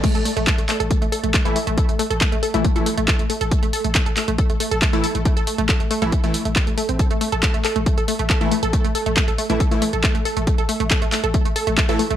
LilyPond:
<<
  \new Staff \with { instrumentName = "Synth arpeggio sound" } { \time 4/4 \key c \major \tempo 4 = 138 a16 a'16 a16 a16 a'16 a16 a16 a'16 a16 a16 a'16 a16 a16 a'16 a16 a16 | a'16 a16 a16 a'16 a16 a16 a'16 a16 a16 a'16 a16 a16 a'16 a16 a16 a'16 | a16 a16 a'16 a16 a16 a'16 a16 a16 a'16 a16 a16 a'16 a16 a16 a'16 a16 | a16 a'16 a16 a16 a'16 a16 a16 a'16 a16 a16 r16 a16 g16 a16 a16 c'16 |
a'16 a16 a16 a'16 a16 a16 a'16 a16 a16 a'16 a16 a16 a'16 a16 a16 a'16 | a16 a16 a'16 a16 a16 a'16 a16 a16 a'16 a16 a16 a'16 a16 a16 a'16 a16 | a16 a'16 a16 a16 a'16 a16 a16 a'16 a16 a16 a'16 a16 a16 a'16 a16 a16 | }
  \new Staff \with { instrumentName = "Synth stab" } { \time 4/4 \key c \major r2. r16 <e a e'>16 r8 | r4. r16 <e a e'>16 r16 <e a e'>16 r4. | r2. r16 <e a e'>16 r8 | r4. r16 <e a e'>16 r16 <e a e'>16 r4. |
r2. r16 <e a e'>16 r8 | r4. r16 <e a e'>16 r16 <e a e'>16 r4. | r2. r16 <e a e'>16 r8 | }
  \new Staff \with { instrumentName = "808-style bass" } { \clef bass \time 4/4 \key c \major r16 a,,16 r16 a,,16 r16 a,,16 r16 a,,16 r16 a,,16 r16 a,,16 r16 a,,16 r16 a,,16 | r16 a,,16 r16 a,,16 r16 a,,16 r16 a,,16 r16 a,,16 r16 a,,16 r16 a,,16 r16 a,,16 | r16 a,,16 r16 a,,16 r16 a,,16 r16 a,,16 r16 a,,16 r16 a,,16 r16 a,,16 r16 a,,16 | r16 a,,16 r16 a,,16 r16 a,,16 r16 a,,16 r16 a,,16 r16 a,,16 r16 a,,16 r16 a,,16 |
r16 a,,16 r16 a,,16 r16 a,,16 r16 a,,16 r16 a,,16 r16 a,,16 r16 a,,16 r16 a,,16 | r16 a,,16 r16 a,,16 r16 a,,16 r16 a,,16 r16 a,,16 r16 a,,16 r16 a,,16 r16 a,,16 | r16 a,,16 r16 a,,16 r16 a,,16 r16 a,,16 r16 a,,16 r16 a,,16 r16 a,,16 r16 a,,16 | }
  \new DrumStaff \with { instrumentName = "Drums" } \drummode { \time 4/4 <cymc hh bd>16 hh16 hho16 hh16 <hc hh bd>16 hh16 <hc hho>16 hh16 <hh bd>16 hh16 hho16 hh16 <hc hh bd>16 hh16 hho16 hh16 | <hh bd>16 hh16 hho16 hh16 <hc hh bd>16 hh16 hho16 hh16 <hh bd>16 hh16 hho16 hh16 <hc hh bd>16 hh16 hho16 hh16 | <hh bd>16 hh16 hho16 hh16 <hc hh bd>16 hh16 <hc hho>16 hh16 <hh bd>16 hh16 hho16 hh16 <hc hh bd>16 hh16 hho16 hh16 | <hh bd>16 hh16 hho16 hh16 <hc hh bd>16 hh16 hho16 hh16 <hh bd>16 hh16 hho16 hh16 <hc hh bd>16 hh16 hho16 hh16 |
<hh bd>16 hh16 hho16 hh16 <hc hh bd>16 hh16 <hc hho>16 hh16 <hh bd>16 hh16 hho16 hh16 <hc hh bd>16 hh16 hho16 hh16 | <hh bd>16 hh16 hho16 hh16 <hc hh bd>16 hh16 hho16 hh16 <hh bd>16 hh16 hho16 hh16 <hc hh bd>16 hh16 hho16 hh16 | <hh bd>16 hh16 hho16 hh16 <hc hh bd>16 hh16 <hc hho>16 hh16 <hh bd>16 hh16 hho16 hh16 <hc hh bd>16 hh16 hho16 hh16 | }
>>